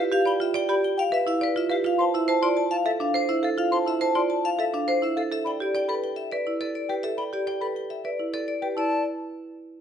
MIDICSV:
0, 0, Header, 1, 4, 480
1, 0, Start_track
1, 0, Tempo, 576923
1, 92, Time_signature, 3, 2, 24, 8
1, 8160, End_track
2, 0, Start_track
2, 0, Title_t, "Flute"
2, 0, Program_c, 0, 73
2, 217, Note_on_c, 0, 83, 69
2, 267, Note_off_c, 0, 83, 0
2, 574, Note_on_c, 0, 83, 61
2, 624, Note_off_c, 0, 83, 0
2, 811, Note_on_c, 0, 79, 81
2, 860, Note_off_c, 0, 79, 0
2, 929, Note_on_c, 0, 76, 70
2, 979, Note_off_c, 0, 76, 0
2, 1411, Note_on_c, 0, 77, 68
2, 1461, Note_off_c, 0, 77, 0
2, 1651, Note_on_c, 0, 84, 66
2, 1701, Note_off_c, 0, 84, 0
2, 2014, Note_on_c, 0, 84, 65
2, 2064, Note_off_c, 0, 84, 0
2, 2251, Note_on_c, 0, 81, 86
2, 2301, Note_off_c, 0, 81, 0
2, 2370, Note_on_c, 0, 76, 73
2, 2420, Note_off_c, 0, 76, 0
2, 2854, Note_on_c, 0, 77, 65
2, 2903, Note_off_c, 0, 77, 0
2, 3092, Note_on_c, 0, 84, 67
2, 3142, Note_off_c, 0, 84, 0
2, 3455, Note_on_c, 0, 84, 62
2, 3504, Note_off_c, 0, 84, 0
2, 3693, Note_on_c, 0, 81, 74
2, 3743, Note_off_c, 0, 81, 0
2, 3814, Note_on_c, 0, 76, 65
2, 3864, Note_off_c, 0, 76, 0
2, 4294, Note_on_c, 0, 77, 63
2, 4344, Note_off_c, 0, 77, 0
2, 4532, Note_on_c, 0, 83, 57
2, 4582, Note_off_c, 0, 83, 0
2, 4896, Note_on_c, 0, 83, 52
2, 4946, Note_off_c, 0, 83, 0
2, 5250, Note_on_c, 0, 76, 55
2, 5300, Note_off_c, 0, 76, 0
2, 5731, Note_on_c, 0, 79, 51
2, 5781, Note_off_c, 0, 79, 0
2, 5971, Note_on_c, 0, 83, 49
2, 6021, Note_off_c, 0, 83, 0
2, 6330, Note_on_c, 0, 83, 46
2, 6380, Note_off_c, 0, 83, 0
2, 6688, Note_on_c, 0, 76, 53
2, 6738, Note_off_c, 0, 76, 0
2, 7171, Note_on_c, 0, 79, 53
2, 7220, Note_off_c, 0, 79, 0
2, 7288, Note_on_c, 0, 81, 68
2, 7513, Note_off_c, 0, 81, 0
2, 8160, End_track
3, 0, Start_track
3, 0, Title_t, "Vibraphone"
3, 0, Program_c, 1, 11
3, 0, Note_on_c, 1, 67, 69
3, 103, Note_on_c, 1, 77, 80
3, 131, Note_off_c, 1, 67, 0
3, 227, Note_on_c, 1, 79, 73
3, 252, Note_off_c, 1, 77, 0
3, 345, Note_on_c, 1, 76, 68
3, 373, Note_off_c, 1, 79, 0
3, 462, Note_on_c, 1, 79, 91
3, 493, Note_off_c, 1, 76, 0
3, 578, Note_on_c, 1, 74, 66
3, 612, Note_off_c, 1, 79, 0
3, 703, Note_on_c, 1, 79, 62
3, 730, Note_off_c, 1, 74, 0
3, 825, Note_on_c, 1, 77, 86
3, 852, Note_off_c, 1, 79, 0
3, 948, Note_on_c, 1, 76, 63
3, 973, Note_off_c, 1, 77, 0
3, 1061, Note_on_c, 1, 77, 67
3, 1094, Note_off_c, 1, 76, 0
3, 1194, Note_on_c, 1, 71, 78
3, 1211, Note_off_c, 1, 77, 0
3, 1310, Note_on_c, 1, 76, 67
3, 1336, Note_off_c, 1, 71, 0
3, 1427, Note_on_c, 1, 67, 64
3, 1455, Note_off_c, 1, 76, 0
3, 1550, Note_on_c, 1, 77, 82
3, 1573, Note_off_c, 1, 67, 0
3, 1669, Note_on_c, 1, 81, 67
3, 1694, Note_off_c, 1, 77, 0
3, 1788, Note_on_c, 1, 76, 69
3, 1814, Note_off_c, 1, 81, 0
3, 1905, Note_on_c, 1, 81, 89
3, 1934, Note_off_c, 1, 76, 0
3, 2019, Note_on_c, 1, 74, 72
3, 2053, Note_off_c, 1, 81, 0
3, 2136, Note_on_c, 1, 81, 68
3, 2171, Note_off_c, 1, 74, 0
3, 2254, Note_on_c, 1, 77, 79
3, 2290, Note_off_c, 1, 81, 0
3, 2379, Note_on_c, 1, 76, 63
3, 2409, Note_off_c, 1, 77, 0
3, 2505, Note_on_c, 1, 77, 70
3, 2530, Note_off_c, 1, 76, 0
3, 2625, Note_on_c, 1, 72, 76
3, 2653, Note_off_c, 1, 77, 0
3, 2738, Note_on_c, 1, 76, 64
3, 2773, Note_off_c, 1, 72, 0
3, 2866, Note_on_c, 1, 69, 68
3, 2890, Note_off_c, 1, 76, 0
3, 2982, Note_on_c, 1, 77, 76
3, 3013, Note_off_c, 1, 69, 0
3, 3104, Note_on_c, 1, 81, 60
3, 3132, Note_off_c, 1, 77, 0
3, 3225, Note_on_c, 1, 76, 63
3, 3252, Note_off_c, 1, 81, 0
3, 3339, Note_on_c, 1, 81, 81
3, 3373, Note_off_c, 1, 76, 0
3, 3454, Note_on_c, 1, 74, 64
3, 3490, Note_off_c, 1, 81, 0
3, 3577, Note_on_c, 1, 81, 57
3, 3609, Note_off_c, 1, 74, 0
3, 3703, Note_on_c, 1, 77, 77
3, 3730, Note_off_c, 1, 81, 0
3, 3826, Note_on_c, 1, 76, 59
3, 3852, Note_off_c, 1, 77, 0
3, 3945, Note_on_c, 1, 77, 64
3, 3973, Note_off_c, 1, 76, 0
3, 4064, Note_on_c, 1, 72, 76
3, 4093, Note_off_c, 1, 77, 0
3, 4188, Note_on_c, 1, 76, 60
3, 4212, Note_off_c, 1, 72, 0
3, 4307, Note_on_c, 1, 69, 62
3, 4334, Note_off_c, 1, 76, 0
3, 4428, Note_on_c, 1, 76, 73
3, 4453, Note_off_c, 1, 69, 0
3, 4552, Note_on_c, 1, 79, 59
3, 4574, Note_off_c, 1, 76, 0
3, 4676, Note_on_c, 1, 74, 54
3, 4695, Note_off_c, 1, 79, 0
3, 4788, Note_on_c, 1, 79, 74
3, 4817, Note_off_c, 1, 74, 0
3, 4903, Note_on_c, 1, 71, 61
3, 4934, Note_off_c, 1, 79, 0
3, 5022, Note_on_c, 1, 79, 59
3, 5052, Note_off_c, 1, 71, 0
3, 5128, Note_on_c, 1, 76, 65
3, 5172, Note_off_c, 1, 79, 0
3, 5254, Note_on_c, 1, 74, 59
3, 5287, Note_off_c, 1, 76, 0
3, 5409, Note_off_c, 1, 74, 0
3, 5497, Note_on_c, 1, 69, 60
3, 5618, Note_on_c, 1, 74, 52
3, 5650, Note_off_c, 1, 69, 0
3, 5735, Note_on_c, 1, 67, 55
3, 5770, Note_off_c, 1, 74, 0
3, 5851, Note_on_c, 1, 76, 67
3, 5889, Note_off_c, 1, 67, 0
3, 5974, Note_on_c, 1, 79, 56
3, 6008, Note_off_c, 1, 76, 0
3, 6103, Note_on_c, 1, 74, 52
3, 6129, Note_off_c, 1, 79, 0
3, 6219, Note_on_c, 1, 79, 71
3, 6252, Note_off_c, 1, 74, 0
3, 6337, Note_on_c, 1, 71, 51
3, 6371, Note_off_c, 1, 79, 0
3, 6458, Note_on_c, 1, 79, 48
3, 6490, Note_off_c, 1, 71, 0
3, 6574, Note_on_c, 1, 76, 63
3, 6610, Note_off_c, 1, 79, 0
3, 6697, Note_on_c, 1, 74, 50
3, 6729, Note_off_c, 1, 76, 0
3, 6850, Note_off_c, 1, 74, 0
3, 6935, Note_on_c, 1, 69, 67
3, 7056, Note_on_c, 1, 74, 53
3, 7089, Note_off_c, 1, 69, 0
3, 7174, Note_on_c, 1, 67, 53
3, 7209, Note_off_c, 1, 74, 0
3, 7302, Note_on_c, 1, 74, 63
3, 7329, Note_off_c, 1, 67, 0
3, 7520, Note_off_c, 1, 74, 0
3, 8160, End_track
4, 0, Start_track
4, 0, Title_t, "Marimba"
4, 0, Program_c, 2, 12
4, 0, Note_on_c, 2, 71, 64
4, 96, Note_on_c, 2, 67, 77
4, 129, Note_off_c, 2, 71, 0
4, 212, Note_on_c, 2, 74, 64
4, 250, Note_off_c, 2, 67, 0
4, 333, Note_on_c, 2, 65, 64
4, 368, Note_off_c, 2, 74, 0
4, 452, Note_on_c, 2, 74, 95
4, 489, Note_off_c, 2, 65, 0
4, 574, Note_on_c, 2, 67, 68
4, 608, Note_off_c, 2, 74, 0
4, 729, Note_off_c, 2, 67, 0
4, 933, Note_on_c, 2, 71, 72
4, 1053, Note_on_c, 2, 64, 69
4, 1088, Note_off_c, 2, 71, 0
4, 1175, Note_on_c, 2, 74, 83
4, 1208, Note_off_c, 2, 64, 0
4, 1297, Note_on_c, 2, 65, 67
4, 1329, Note_off_c, 2, 74, 0
4, 1411, Note_on_c, 2, 71, 68
4, 1450, Note_off_c, 2, 65, 0
4, 1534, Note_on_c, 2, 65, 79
4, 1568, Note_off_c, 2, 71, 0
4, 1657, Note_on_c, 2, 72, 62
4, 1689, Note_off_c, 2, 65, 0
4, 1782, Note_on_c, 2, 64, 67
4, 1810, Note_off_c, 2, 72, 0
4, 1896, Note_on_c, 2, 72, 90
4, 1931, Note_off_c, 2, 64, 0
4, 2018, Note_on_c, 2, 65, 68
4, 2050, Note_off_c, 2, 72, 0
4, 2170, Note_off_c, 2, 65, 0
4, 2377, Note_on_c, 2, 69, 65
4, 2497, Note_on_c, 2, 62, 62
4, 2530, Note_off_c, 2, 69, 0
4, 2615, Note_on_c, 2, 72, 85
4, 2650, Note_off_c, 2, 62, 0
4, 2735, Note_on_c, 2, 64, 67
4, 2769, Note_off_c, 2, 72, 0
4, 2854, Note_on_c, 2, 69, 64
4, 2889, Note_off_c, 2, 64, 0
4, 2975, Note_on_c, 2, 65, 73
4, 3009, Note_off_c, 2, 69, 0
4, 3097, Note_on_c, 2, 72, 64
4, 3129, Note_off_c, 2, 65, 0
4, 3215, Note_on_c, 2, 64, 58
4, 3250, Note_off_c, 2, 72, 0
4, 3336, Note_on_c, 2, 72, 81
4, 3369, Note_off_c, 2, 64, 0
4, 3455, Note_on_c, 2, 65, 64
4, 3489, Note_off_c, 2, 72, 0
4, 3609, Note_off_c, 2, 65, 0
4, 3816, Note_on_c, 2, 69, 60
4, 3941, Note_on_c, 2, 62, 60
4, 3970, Note_off_c, 2, 69, 0
4, 4059, Note_on_c, 2, 72, 81
4, 4091, Note_off_c, 2, 62, 0
4, 4177, Note_on_c, 2, 64, 59
4, 4211, Note_off_c, 2, 72, 0
4, 4301, Note_on_c, 2, 69, 57
4, 4330, Note_off_c, 2, 64, 0
4, 4413, Note_off_c, 2, 69, 0
4, 4423, Note_on_c, 2, 69, 65
4, 4543, Note_on_c, 2, 74, 56
4, 4572, Note_off_c, 2, 69, 0
4, 4663, Note_on_c, 2, 67, 60
4, 4692, Note_off_c, 2, 74, 0
4, 4781, Note_on_c, 2, 74, 77
4, 4812, Note_off_c, 2, 67, 0
4, 4899, Note_on_c, 2, 69, 57
4, 4931, Note_off_c, 2, 74, 0
4, 5051, Note_off_c, 2, 69, 0
4, 5262, Note_on_c, 2, 71, 58
4, 5380, Note_on_c, 2, 64, 50
4, 5412, Note_off_c, 2, 71, 0
4, 5497, Note_on_c, 2, 74, 68
4, 5531, Note_off_c, 2, 64, 0
4, 5650, Note_off_c, 2, 74, 0
4, 5738, Note_on_c, 2, 71, 50
4, 5857, Note_on_c, 2, 69, 59
4, 5890, Note_off_c, 2, 71, 0
4, 5974, Note_on_c, 2, 74, 47
4, 6010, Note_off_c, 2, 69, 0
4, 6097, Note_on_c, 2, 67, 55
4, 6129, Note_off_c, 2, 74, 0
4, 6216, Note_on_c, 2, 74, 68
4, 6250, Note_off_c, 2, 67, 0
4, 6336, Note_on_c, 2, 69, 51
4, 6369, Note_off_c, 2, 74, 0
4, 6490, Note_off_c, 2, 69, 0
4, 6696, Note_on_c, 2, 71, 49
4, 6818, Note_on_c, 2, 64, 49
4, 6850, Note_off_c, 2, 71, 0
4, 6937, Note_on_c, 2, 74, 68
4, 6970, Note_off_c, 2, 64, 0
4, 7090, Note_off_c, 2, 74, 0
4, 7176, Note_on_c, 2, 71, 50
4, 7294, Note_on_c, 2, 64, 63
4, 7330, Note_off_c, 2, 71, 0
4, 7516, Note_off_c, 2, 64, 0
4, 8160, End_track
0, 0, End_of_file